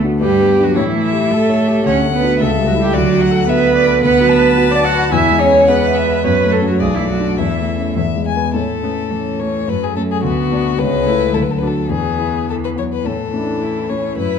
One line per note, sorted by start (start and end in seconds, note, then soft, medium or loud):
0.00 0.19 D2 medium
0.00 0.14 A3 soft
0.00 0.19 A3 medium
0.00 0.19 D4 soft
0.00 0.20 F#4 soft
0.20 0.75 G2 medium
0.20 0.61 G3 medium
0.20 0.65 G4 medium
0.20 0.72 B4 medium
0.41 0.69 B3 soft
0.59 0.77 F#3 medium
0.59 0.75 D4 soft
0.59 0.77 F#4 medium
0.59 0.75 G4 soft
0.75 1.83 A2 medium
0.75 1.32 E3 medium
0.75 1.33 E4 medium
0.75 0.83 C#5 medium
0.95 1.24 A3 soft
1.03 1.84 E5 medium
1.13 1.42 G4 soft
1.30 1.84 A3 medium
1.30 1.60 A4 medium
1.30 1.85 A4 medium
1.49 1.78 C#5 soft
1.67 1.85 G4 soft
1.85 2.38 D2 medium
1.85 2.12 C#4 medium
1.85 1.94 C#5 medium
1.85 2.38 F#5 medium
2.04 2.33 A3 soft
2.13 2.39 B3 medium
2.13 2.42 B4 medium
2.22 2.38 D4 soft
2.22 2.39 F#4 soft
2.39 2.92 C#2 medium
2.39 2.48 A3 medium
2.39 2.66 A4 medium
2.39 2.95 E5 medium
2.58 2.87 G3 soft
2.66 2.79 F#3 medium
2.66 2.72 F#4 medium
2.75 2.85 G3 medium
2.75 2.92 E4 soft
2.75 2.92 A4 medium
2.81 2.95 G4 medium
2.92 4.00 D2 medium
2.92 3.45 F#3 medium
2.92 3.47 F#4 medium
2.92 3.23 D5 medium
3.12 3.41 F#3 soft
3.21 3.50 F#5 medium
3.31 3.59 A4 medium
3.46 4.00 B3 medium
3.46 3.77 F#4 medium
3.46 4.01 B4 medium
3.46 3.75 E5 medium
3.66 3.95 F#5 medium
3.75 4.02 D5 medium
3.84 4.02 A4 medium
4.01 5.10 D2 medium
4.01 4.71 B3 medium
4.01 4.73 B4 medium
4.01 4.30 F#5 medium
4.20 4.50 F#3 medium
4.29 5.14 A5 medium
4.38 4.68 B4 soft
4.57 4.87 F#4 medium
4.70 4.84 D4 medium
4.70 4.86 D5 medium
4.75 5.05 F#5 soft
4.84 5.11 F#4 medium
4.84 5.12 F#5 medium
4.94 5.13 B4 medium
5.11 6.21 E2 medium
5.11 5.42 E4 medium
5.11 5.41 E5 medium
5.11 5.67 G#5 medium
5.31 5.61 G#3 soft
5.39 5.70 C#4 medium
5.39 5.70 C#5 medium
5.50 5.80 B4 soft
5.68 6.23 B3 medium
5.68 5.98 G#4 medium
5.68 6.23 B4 medium
5.68 5.96 F#5 medium
5.87 6.17 E5 soft
5.95 6.25 E5 medium
6.07 6.25 B4 soft
6.23 6.79 F#2 medium
6.23 6.32 B3 medium
6.23 6.53 B4 medium
6.23 6.81 C#5 medium
6.44 6.73 A3 soft
6.51 6.57 A3 soft
6.51 6.66 A4 medium
6.62 6.79 C#4 soft
6.62 6.79 F#4 soft
6.67 6.82 F#3 medium
6.67 6.73 F#4 medium
6.79 7.37 B1 medium
6.79 6.94 G#3 medium
6.79 6.96 G#4 medium
6.79 7.39 D5 soft
6.95 7.11 E3 soft
6.95 7.08 E4 medium
7.00 7.31 A3 soft
7.08 7.38 F#3 soft
7.08 7.37 F#4 medium
7.19 7.37 D4 soft
7.19 7.37 F#4 soft
7.38 7.95 E2 soft
7.38 7.96 E3 soft
7.38 7.96 E4 medium
7.38 7.91 E5 soft
7.59 7.90 A3 soft
7.78 7.96 C#4 soft
7.78 7.96 A4 soft
7.96 8.53 E2 soft
7.96 8.24 E5 soft
8.16 8.47 G#3 soft
8.28 8.55 G#5 soft
8.36 8.53 B3 soft
8.36 8.53 B4 soft
8.54 8.82 A2 soft
8.54 9.13 A3 soft
8.54 8.63 C#4 soft
8.54 9.41 A4 soft
8.83 9.36 A3 soft
8.83 8.91 B3 soft
8.83 9.36 C#4 soft
8.83 9.36 A4 soft
9.12 9.69 E3 soft
9.12 9.69 C#4 soft
9.40 9.65 A3 soft
9.40 9.65 C#4 soft
9.40 9.66 A4 soft
9.40 9.70 C#5 medium
9.67 9.95 F#2 soft
9.67 10.24 F#3 soft
9.67 10.22 A3 soft
9.67 9.85 B4 medium
9.83 9.96 G#4 medium
9.96 10.21 A3 soft
9.96 10.21 C#4 soft
9.96 10.02 A4 medium
9.96 10.21 A4 soft
10.12 10.22 G#4 soft
10.23 10.50 D2 soft
10.23 10.53 B3 soft
10.23 10.77 B3 soft
10.23 10.80 F#4 medium
10.51 10.78 A3 soft
10.51 10.76 B3 soft
10.51 10.76 D4 soft
10.51 10.77 D5 soft
10.78 11.06 C#2 soft
10.78 11.36 G#3 medium
10.78 11.08 C#4 medium
10.78 11.35 B4 medium
11.06 11.31 A3 soft
11.06 11.33 E4 medium
11.06 11.32 E4 soft
11.06 11.32 A4 soft
11.33 11.61 D2 soft
11.33 11.91 F#3 soft
11.33 11.41 E4 soft
11.33 11.44 A4 soft
11.42 11.53 B4 soft
11.51 11.60 A4 soft
11.58 11.87 D4 soft
11.58 11.70 D4 soft
11.58 11.88 F#4 soft
11.58 11.88 A4 soft
11.58 11.69 B4 soft
11.67 11.91 A4 soft
11.89 12.17 E2 soft
11.89 12.41 E3 soft
11.89 12.74 B3 soft
11.89 12.47 G#4 soft
12.18 12.72 B3 soft
12.18 12.72 E4 soft
12.48 12.78 E3 soft
12.48 12.55 A4 soft
12.64 12.70 B4 soft
12.76 13.03 F#3 soft
12.76 13.02 B3 soft
12.76 13.02 E4 soft
12.76 12.83 C#5 soft
12.93 13.08 B4 soft
13.04 13.32 A2 soft
13.04 14.21 E3 soft
13.04 13.13 C#4 soft
13.04 13.91 A4 soft
13.33 13.85 A3 soft
13.33 13.85 C#4 soft
13.33 13.63 D4 soft
13.33 13.85 E4 soft
13.62 13.89 E4 soft
13.89 14.15 A3 soft
13.89 14.15 C#4 soft
13.89 14.17 C#4 soft
13.89 14.15 E4 soft
13.89 14.17 C#5 soft
14.17 14.39 F#2 soft
14.17 14.39 F#3 soft
14.17 14.39 E4 soft
14.17 14.39 B4 medium